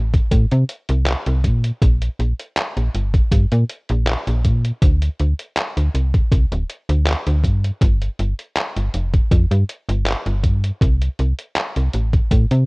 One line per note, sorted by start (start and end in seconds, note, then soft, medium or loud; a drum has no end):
0.00 0.22 A1 medium
0.14 kick loud
0.14 closed hi-hat soft
0.31 0.46 A2 medium
0.31 kick loud
0.31 closed hi-hat loud
0.51 0.64 C3 loud
0.51 closed hi-hat soft
0.69 closed hi-hat medium
0.89 1.15 C2 loud
0.89 closed hi-hat soft
1.06 clap loud
1.06 closed hi-hat medium
1.26 1.46 C2 loud
1.26 closed hi-hat soft
1.44 1.71 A#2 loud
1.44 kick medium
1.44 closed hi-hat medium
1.64 closed hi-hat soft
1.82 2.09 A#1 loud
1.82 kick loud
1.82 closed hi-hat loud
2.02 closed hi-hat soft
2.19 2.33 A#1 medium
2.19 closed hi-hat soft
2.40 closed hi-hat soft
2.57 clap loud
2.57 closed hi-hat loud
2.77 2.89 A#1 medium
2.77 closed hi-hat soft
2.95 3.22 G1 medium
2.95 closed hi-hat medium
3.14 kick loud
3.14 closed hi-hat soft
3.32 3.46 G2 medium
3.32 kick loud
3.32 closed hi-hat loud
3.52 3.64 A#2 loud
3.52 closed hi-hat soft
3.70 closed hi-hat medium
3.89 4.16 A#1 loud
3.89 closed hi-hat soft
4.07 clap loud
4.07 closed hi-hat loud
4.27 4.46 A#1 loud
4.27 closed hi-hat soft
4.44 4.72 A#2 loud
4.44 kick medium
4.44 closed hi-hat medium
4.64 closed hi-hat soft
4.82 5.09 D2 loud
4.82 kick loud
4.82 closed hi-hat loud
5.02 closed hi-hat soft
5.19 5.34 D2 medium
5.19 closed hi-hat soft
5.39 closed hi-hat soft
5.57 clap loud
5.57 closed hi-hat medium
5.77 5.89 D2 medium
5.77 closed hi-hat soft
5.94 6.22 C2 medium
5.94 closed hi-hat medium
6.14 kick loud
6.14 closed hi-hat soft
6.32 6.46 C2 medium
6.32 kick loud
6.32 closed hi-hat medium
6.52 6.64 D1 loud
6.52 closed hi-hat soft
6.70 closed hi-hat medium
6.89 7.15 D2 loud
6.89 closed hi-hat soft
7.07 clap loud
7.07 closed hi-hat medium
7.27 7.46 D2 loud
7.27 closed hi-hat soft
7.44 7.72 G2 loud
7.44 kick medium
7.44 closed hi-hat medium
7.65 closed hi-hat soft
7.81 8.09 G1 loud
7.81 kick loud
7.81 closed hi-hat medium
8.02 closed hi-hat soft
8.19 8.33 G1 medium
8.19 closed hi-hat soft
8.39 closed hi-hat soft
8.57 clap loud
8.57 closed hi-hat medium
8.77 8.89 G1 medium
8.77 closed hi-hat soft
8.94 9.22 F1 medium
8.94 closed hi-hat medium
9.14 kick loud
9.14 closed hi-hat soft
9.31 9.46 F2 medium
9.31 kick loud
9.31 closed hi-hat medium
9.51 9.64 G2 loud
9.51 closed hi-hat soft
9.69 closed hi-hat medium
9.88 10.15 G1 loud
9.88 closed hi-hat soft
10.06 clap loud
10.06 closed hi-hat medium
10.26 10.45 G1 loud
10.26 closed hi-hat soft
10.44 10.71 G2 loud
10.44 kick medium
10.44 closed hi-hat medium
10.64 closed hi-hat soft
10.81 11.09 C2 loud
10.81 kick loud
10.81 closed hi-hat medium
11.02 closed hi-hat soft
11.19 11.33 C2 medium
11.19 closed hi-hat soft
11.39 closed hi-hat soft
11.56 clap loud
11.56 closed hi-hat medium
11.76 11.89 C2 medium
11.76 closed hi-hat soft
11.93 12.22 A1 medium
11.93 closed hi-hat medium
12.13 kick loud
12.13 closed hi-hat soft
12.31 12.46 A2 medium
12.31 kick loud
12.31 closed hi-hat medium
12.51 12.64 C3 loud
12.51 closed hi-hat soft